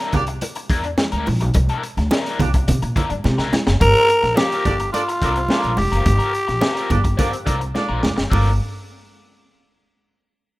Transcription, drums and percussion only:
0.00 closed hi-hat
0.12 kick, closed hi-hat, low conga
0.27 closed hi-hat
0.41 closed hi-hat, muted conga
0.55 closed hi-hat
0.70 kick, closed hi-hat, muted conga
0.83 closed hi-hat
0.98 snare, high conga
1.12 closed hi-hat
1.26 open hi-hat, high conga
1.40 closed hi-hat
1.54 kick, closed hi-hat, muted conga
1.69 closed hi-hat
1.83 closed hi-hat
1.97 snare, closed hi-hat
2.11 snare, high conga
2.25 snare, closed hi-hat
2.40 kick, closed hi-hat, low conga
2.54 kick, closed hi-hat
2.68 kick, closed hi-hat, muted conga, low conga
2.82 closed hi-hat
2.96 kick, closed hi-hat, muted conga, low conga
3.10 closed hi-hat
3.24 snare, high conga
3.38 snare
3.53 snare, high conga
3.67 snare
3.81 kick, closed hi-hat, muted conga
3.95 closed hi-hat
4.09 closed hi-hat
4.23 snare, closed hi-hat
4.37 snare, high conga
4.51 snare, closed hi-hat
4.65 kick, closed hi-hat, low conga
4.79 closed hi-hat
4.94 closed hi-hat, muted conga
5.09 closed hi-hat
5.22 kick, closed hi-hat, muted conga
5.36 closed hi-hat
5.49 snare, high conga
5.63 closed hi-hat
5.77 open hi-hat, high conga
5.93 closed hi-hat
6.06 kick, closed hi-hat, muted conga
6.20 closed hi-hat
6.34 closed hi-hat
6.48 snare, closed hi-hat
6.61 snare, high conga
6.76 snare, closed hi-hat
6.90 kick, closed hi-hat, low conga
7.04 kick, closed hi-hat
7.19 kick, closed hi-hat, muted conga, low conga
7.33 closed hi-hat
7.47 kick, closed hi-hat, muted conga
7.61 closed hi-hat
7.75 snare, high conga
8.03 snare, high conga
8.18 snare
8.31 kick, open hi-hat, muted conga

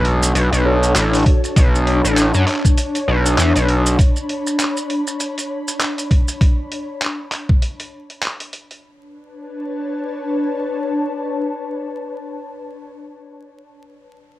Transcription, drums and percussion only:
0.05 closed hi-hat
0.23 maracas
0.35 closed hi-hat, maracas
0.53 closed hi-hat, maracas
0.83 closed hi-hat, maracas
0.96 clap, closed hi-hat, maracas
1.13 closed hi-hat, maracas
1.17 closed hi-hat
1.19 closed hi-hat
1.23 kick, closed hi-hat
1.26 closed hi-hat
1.44 closed hi-hat, maracas
1.56 kick, closed hi-hat, maracas
1.75 maracas
1.87 closed hi-hat
2.05 maracas
2.17 clap, closed hi-hat, maracas
2.34 maracas
2.48 clap, closed hi-hat
2.52 clap
2.56 clap
2.60 clap
2.65 kick, maracas
2.78 closed hi-hat, maracas
2.95 closed hi-hat, maracas
3.26 closed hi-hat, maracas
3.38 clap, closed hi-hat, maracas
3.55 closed hi-hat, maracas
3.68 closed hi-hat
3.86 closed hi-hat, maracas
3.99 kick, closed hi-hat, maracas
4.16 maracas
4.29 closed hi-hat
4.47 maracas
4.60 clap, closed hi-hat, maracas
4.77 maracas
4.90 closed hi-hat
5.07 maracas
5.20 closed hi-hat, maracas
5.38 closed hi-hat, maracas
5.68 closed hi-hat, maracas
5.80 clap, closed hi-hat, maracas
5.98 closed hi-hat, maracas
6.11 kick, closed hi-hat
6.28 closed hi-hat, maracas
6.41 kick, closed hi-hat
6.72 closed hi-hat
7.02 clap, closed hi-hat
7.32 clap, closed hi-hat
7.49 kick
7.62 closed hi-hat
7.80 closed hi-hat
8.10 closed hi-hat
8.23 clap, closed hi-hat
8.40 closed hi-hat
8.53 closed hi-hat
8.71 closed hi-hat

